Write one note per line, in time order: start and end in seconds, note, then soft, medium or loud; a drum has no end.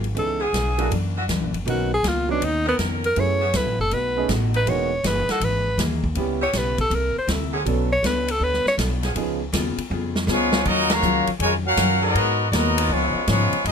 0.00 0.14 G#1 medium
0.00 ride soft
0.15 0.52 C#2 medium
0.15 0.42 C#3 soft
0.15 0.38 E3 soft
0.15 0.38 B3 soft
0.15 0.43 B3 soft
0.15 0.39 C#4 soft
0.15 0.39 D#4 soft
0.15 0.43 E4 medium
0.15 0.39 G#4 medium
0.15 0.43 G#4 soft
0.15 ride medium
0.19 0.44 A4 medium
0.39 0.76 E3 loud
0.39 0.76 B3 loud
0.39 0.76 C#4 medium
0.39 0.75 G#4 loud
0.39 0.92 G#4 loud
0.53 0.90 B1 medium
0.53 0.80 C#3 medium
0.53 0.80 B3 medium
0.53 0.81 E4 medium
0.53 0.81 G#4 medium
0.53 snare medium
0.53 hi-hat pedal medium
0.53 ride medium
0.78 0.87 E3 medium
0.78 0.90 F#3 medium
0.78 0.87 A#3 medium
0.78 0.90 A#3 medium
0.78 0.87 D4 medium
0.78 0.90 D4 medium
0.78 0.90 E4 medium
0.78 0.87 F#4 medium
0.78 0.90 A4 medium
0.78 ride medium
0.91 1.27 F#2 medium
0.91 1.18 F#2 medium
0.91 1.18 E3 medium
0.91 1.18 A#3 medium
0.91 1.19 D4 medium
0.91 ride medium
1.16 1.24 E3 medium
1.16 1.25 A#3 medium
1.16 1.25 D4 medium
1.16 1.25 F#4 loud
1.28 1.41 D2 medium
1.28 1.55 F#2 medium
1.28 1.56 E3 medium
1.28 1.56 A#3 medium
1.28 1.56 D4 medium
1.28 snare medium
1.28 hi-hat pedal medium
1.28 ride medium
1.41 1.53 A#1 medium
1.53 1.65 F#1 medium
1.53 ride medium
1.65 2.02 B1 medium
1.65 1.93 B2 soft
1.65 1.93 D#3 medium
1.65 1.89 F#3 medium
1.65 1.93 A#3 medium
1.65 1.89 B3 medium
1.65 1.89 C#4 medium
1.65 1.94 C#4 soft
1.65 1.89 D#4 medium
1.65 1.90 A#4 medium
1.65 ride medium
1.70 1.91 F#4 medium
1.94 2.10 G#4 loud
2.03 2.40 C#2 medium
2.03 2.30 B2 medium
2.03 2.30 D#3 medium
2.03 2.30 A#3 medium
2.03 2.31 C#4 medium
2.03 snare medium
2.03 hi-hat pedal medium
2.03 ride medium
2.08 2.30 F4 loud
2.29 2.40 F#3 medium
2.29 2.40 B3 medium
2.29 2.41 C#4 medium
2.29 2.46 D4 medium
2.29 2.41 D#4 medium
2.29 2.41 C#5 medium
2.40 2.77 D#2 medium
2.40 2.68 B2 medium
2.40 2.68 D#3 medium
2.40 2.68 A#3 medium
2.40 2.69 C#4 medium
2.40 ride medium
2.45 2.68 D#4 loud
2.65 3.13 D#3 medium
2.65 3.13 B3 medium
2.65 2.75 B3 loud
2.65 3.13 C#4 medium
2.65 3.13 A#4 loud
2.79 3.15 F2 medium
2.79 3.05 B2 medium
2.79 3.06 D#3 medium
2.79 3.06 A#3 medium
2.79 3.06 C#4 medium
2.79 snare medium
2.79 hi-hat pedal medium
2.79 ride medium
3.04 3.21 A#4 loud
3.04 ride medium
3.16 3.53 F#2 medium
3.16 3.43 F#3 soft
3.16 3.39 A3 medium
3.16 3.39 B3 soft
3.16 3.43 B3 soft
3.16 3.39 C#4 medium
3.16 3.39 E4 medium
3.16 3.44 E4 medium
3.16 3.39 G#4 medium
3.16 3.44 A4 medium
3.16 3.58 C#5 loud
3.16 ride medium
3.41 3.50 E3 medium
3.41 3.50 A3 loud
3.41 3.50 B3 loud
3.41 3.50 G#4 loud
3.53 3.66 C#2 medium
3.53 3.80 F#3 medium
3.53 3.80 B3 medium
3.53 3.81 E4 medium
3.53 3.81 A4 medium
3.53 3.80 B4 medium
3.53 snare medium
3.53 hi-hat pedal medium
3.53 ride medium
3.66 3.78 A1 medium
3.79 3.90 F#1 medium
3.79 3.95 A4 medium
3.91 4.28 B1 medium
3.91 4.18 B2 soft
3.91 4.18 A3 medium
3.91 4.18 D#4 medium
3.91 4.18 F#4 medium
3.91 4.30 B4 medium
3.91 ride medium
4.17 4.28 A3 medium
4.17 4.28 B3 medium
4.17 4.28 C#4 medium
4.17 4.28 D#4 medium
4.17 4.28 G#4 medium
4.29 4.65 A1 medium
4.29 4.55 B2 medium
4.29 4.55 A3 medium
4.29 4.55 D#4 medium
4.29 4.56 F#4 medium
4.29 snare medium
4.29 hi-hat pedal medium
4.29 ride medium
4.53 4.62 D#3 medium
4.53 4.62 G#3 medium
4.53 4.62 A#3 medium
4.53 4.62 D#4 medium
4.53 4.71 B4 medium
4.53 ride medium
4.66 5.02 E1 medium
4.66 4.92 E3 medium
4.66 4.89 G#3 medium
4.66 4.93 A#3 soft
4.66 4.89 A#3 medium
4.66 4.89 B3 medium
4.66 4.89 D#4 medium
4.66 4.93 D#4 soft
4.66 4.89 F#4 medium
4.66 4.93 G#4 soft
4.66 5.08 C#5 medium
4.66 ride medium
5.04 5.27 F#1 medium
5.04 5.30 E3 medium
5.04 5.30 A#3 medium
5.04 5.30 D#4 medium
5.04 5.31 G#4 medium
5.04 5.33 B4 medium
5.04 snare medium
5.04 hi-hat pedal medium
5.04 ride medium
5.28 5.37 D#3 medium
5.28 5.37 G#3 medium
5.28 5.37 A#3 medium
5.28 5.37 F#4 loud
5.28 5.46 A4 medium
5.28 muted upright bass stroke soft
5.28 snare medium
5.28 ride medium
5.40 5.77 G#1 medium
5.40 5.67 E3 medium
5.40 5.67 A#3 medium
5.40 5.68 D#4 medium
5.40 5.68 G#4 medium
5.40 ride medium
5.44 5.80 B4 loud
5.77 6.14 D#2 medium
5.77 6.05 E3 medium
5.77 6.05 A#3 medium
5.77 6.05 D#4 medium
5.77 6.05 G#4 medium
5.77 snare medium
5.77 hi-hat pedal medium
5.77 ride medium
6.04 kick medium
6.15 6.52 C#2 medium
6.15 6.42 C#3 medium
6.15 6.39 G3 medium
6.15 6.42 B3 medium
6.15 6.39 B3 medium
6.15 6.39 C#4 medium
6.15 6.43 E4 medium
6.15 6.39 E4 medium
6.15 6.43 G4 medium
6.15 6.40 G4 medium
6.15 ride medium
6.41 6.50 E3 loud
6.41 6.50 B3 loud
6.41 6.50 C#4 loud
6.41 6.49 G4 loud
6.41 6.59 C#5 medium
6.53 6.90 B1 medium
6.53 6.80 C#3 medium
6.53 6.80 B3 medium
6.53 6.80 E4 medium
6.53 6.81 G4 medium
6.53 snare medium
6.53 hi-hat pedal medium
6.53 ride medium
6.58 6.80 B4 medium
6.78 6.96 A4 medium
6.78 kick medium
6.78 ride medium
6.90 7.14 C2 medium
6.90 7.17 C3 medium
6.90 7.17 A#3 medium
6.90 7.18 E4 medium
6.90 7.18 A4 medium
6.90 ride medium
6.95 7.18 A#4 medium
7.16 7.29 C5 medium
7.16 muted upright bass stroke soft
7.27 7.64 D2 medium
7.27 7.55 C3 medium
7.27 7.55 A#3 medium
7.27 7.55 E4 medium
7.27 7.55 A4 medium
7.27 snare medium
7.27 hi-hat pedal medium
7.27 ride medium
7.52 7.61 D3 medium
7.52 7.61 B3 medium
7.52 7.61 C#4 medium
7.52 7.62 G#4 loud
7.65 8.02 B1 medium
7.65 7.88 F#3 medium
7.65 7.92 B3 medium
7.65 7.88 B3 medium
7.65 7.89 C#4 medium
7.65 7.89 D4 medium
7.65 7.92 D4 medium
7.65 7.89 A4 medium
7.65 7.93 A4 medium
7.65 7.93 C#5 medium
7.65 ride medium
7.92 8.08 C#5 loud
8.03 8.39 C#2 medium
8.03 8.29 B3 medium
8.03 8.30 D4 medium
8.03 8.30 A4 medium
8.03 8.32 B4 medium
8.03 8.30 C#5 medium
8.03 snare medium
8.03 hi-hat pedal medium
8.03 ride medium
8.28 8.45 A4 loud
8.28 ride medium
8.40 8.64 D2 medium
8.40 8.67 B3 medium
8.40 8.67 D4 medium
8.40 8.68 A4 medium
8.40 8.67 B4 loud
8.40 8.68 C#5 medium
8.53 snare soft
8.65 8.75 C#5 loud
8.65 muted upright bass stroke soft
8.65 snare soft
8.78 9.14 B1 medium
8.78 9.04 B3 medium
8.78 9.04 D4 medium
8.78 9.05 A4 medium
8.78 9.05 C#5 medium
8.78 snare medium
8.78 hi-hat pedal soft
8.78 ride medium
9.03 9.12 F3 medium
9.03 9.12 B3 medium
9.03 9.12 C#4 medium
9.03 9.12 G#4 medium
9.03 snare soft
9.03 ride medium
9.15 9.52 C#2 medium
9.15 9.42 C#3 soft
9.15 9.38 F3 medium
9.15 9.38 B3 medium
9.15 9.42 B3 medium
9.15 9.38 C#4 medium
9.15 9.38 D#4 soft
9.15 9.42 F4 medium
9.15 9.39 G#4 medium
9.15 9.43 G#4 medium
9.15 ride medium
9.53 9.76 D#2 loud
9.53 9.79 C#3 medium
9.53 9.80 B3 medium
9.53 9.80 F4 medium
9.53 9.80 G#4 medium
9.53 snare medium
9.53 hi-hat pedal medium
9.53 ride medium
9.77 muted upright bass stroke soft
9.77 ride medium
9.90 10.26 F2 medium
9.90 10.17 C#3 medium
9.90 10.18 B3 medium
9.90 10.18 F4 medium
9.90 10.18 G#4 medium
9.90 high tom medium
10.16 snare medium
10.27 10.64 C#2 loud
10.27 10.54 C#3 medium
10.27 10.63 F3 medium
10.27 10.63 G#3 medium
10.27 10.54 B3 medium
10.27 10.64 B3 medium
10.27 10.63 C#4 medium
10.27 10.55 F4 medium
10.27 10.64 F4 medium
10.27 10.55 G#4 medium
10.27 10.64 G#4 medium
10.27 10.64 C#5 medium
10.27 snare medium
10.27 hi-hat pedal medium
10.52 10.62 D#3 loud
10.52 10.61 F#3 medium
10.52 10.62 C#4 medium
10.52 10.61 F4 loud
10.52 snare loud
10.65 11.02 D#2 loud
10.65 10.92 D#3 medium
10.65 10.90 F#3 loud
10.65 10.92 F#3 medium
10.65 10.90 A#3 loud
10.65 10.91 C#4 medium
10.65 10.93 C#4 soft
10.65 10.91 D#4 medium
10.65 10.93 F4 medium
10.65 10.90 F#4 medium
10.65 10.91 A#4 medium
10.65 10.91 D#5 loud
10.65 kick medium
10.65 crash medium
10.90 11.28 C#3 medium
10.90 11.28 F#3 loud
10.90 11.28 A#3 loud
10.90 11.28 F#4 medium
10.90 11.28 C#5 loud
10.90 11.29 F5 medium
10.90 11.28 A#5 loud
10.90 snare loud
10.90 ride medium
11.02 11.26 C#2 loud
11.02 11.29 D#3 medium
11.02 11.29 F#3 medium
11.02 11.30 C#4 medium
11.02 11.30 F4 medium
11.02 hi-hat pedal medium
11.27 muted upright bass stroke soft
11.27 ride medium
11.39 11.76 F2 medium
11.39 11.67 D#3 medium
11.39 11.67 F#3 medium
11.39 11.52 G#3 medium
11.39 11.67 C#4 medium
11.39 11.53 F4 medium
11.39 11.68 F4 medium
11.39 11.53 A#4 medium
11.39 11.53 C#5 medium
11.39 11.53 G#5 loud
11.39 ride medium
11.65 12.00 A#3 medium
11.65 12.00 C#4 medium
11.65 12.01 C#4 medium
11.65 12.00 F#4 medium
11.65 12.01 A#4 medium
11.65 12.01 F5 medium
11.65 12.01 F#5 loud
11.77 12.14 F#2 medium
11.77 12.04 D#3 medium
11.77 12.05 F#3 medium
11.77 12.05 C#4 medium
11.77 12.05 F4 medium
11.77 snare medium
11.77 hi-hat pedal medium
11.77 ride medium
12.02 12.14 F#3 loud
12.02 12.45 F#3 medium
12.02 12.45 B3 loud
12.02 12.14 B3 medium
12.02 12.46 B3 medium
12.02 12.45 D#4 medium
12.02 12.46 F#4 loud
12.02 12.14 G#4 loud
12.02 12.50 A#4 medium
12.02 12.46 A#4 loud
12.02 12.46 D#5 loud
12.15 12.51 G#2 medium
12.15 12.32 F#3 medium
12.15 12.42 G#3 medium
12.15 12.32 A#3 medium
12.15 12.32 B3 medium
12.15 12.42 B3 medium
12.15 12.43 F#4 medium
12.15 12.32 G#4 loud
12.15 12.43 A#4 medium
12.15 ride medium
12.50 12.89 D#2 loud
12.50 12.90 F#3 medium
12.50 12.79 G#3 medium
12.50 12.90 B3 medium
12.50 12.91 B3 medium
12.50 12.80 B3 medium
12.50 12.90 D#4 medium
12.50 12.91 F#4 medium
12.50 12.91 A#4 medium
12.50 12.54 D5 medium
12.50 12.91 D#5 loud
12.50 snare medium
12.50 hi-hat pedal medium
12.50 ride medium
12.55 12.80 F#4 medium
12.55 12.80 A#4 medium
12.78 13.25 D#3 loud
12.78 13.25 B3 loud
12.78 13.26 C#4 loud
12.78 13.25 F4 loud
12.78 ride loud
12.89 13.13 C#2 loud
12.89 13.17 C#3 medium
12.89 13.25 F3 medium
12.89 13.17 F3 medium
12.89 13.26 G#3 medium
12.89 13.28 B3 medium
12.89 13.17 B3 medium
12.89 13.25 C#4 medium
12.89 13.18 D#4 medium
12.89 13.28 F4 medium
12.89 13.28 G#4 medium
12.89 13.28 C#5 medium
13.14 muted upright bass stroke soft
13.26 13.51 G#2 loud
13.26 13.54 C#3 medium
13.26 13.62 F3 medium
13.26 13.55 F3 medium
13.26 13.62 G#3 medium
13.26 13.63 B3 medium
13.26 13.55 B3 medium
13.26 13.62 C#4 medium
13.26 13.55 D#4 medium
13.26 13.63 F4 medium
13.26 13.63 G#4 medium
13.26 13.63 C#5 loud
13.26 snare medium
13.26 hi-hat pedal medium
13.26 ride medium
13.52 muted upright bass stroke soft
13.52 ride medium
13.64 13.72 F#2 loud
13.64 13.72 F#3 soft
13.64 13.72 A#3 medium
13.64 13.72 B3 medium
13.64 13.72 D#4 medium
13.64 13.72 F4 medium
13.64 13.72 G#4 medium
13.64 13.72 G#4 soft
13.64 13.72 D#5 loud
13.64 ride medium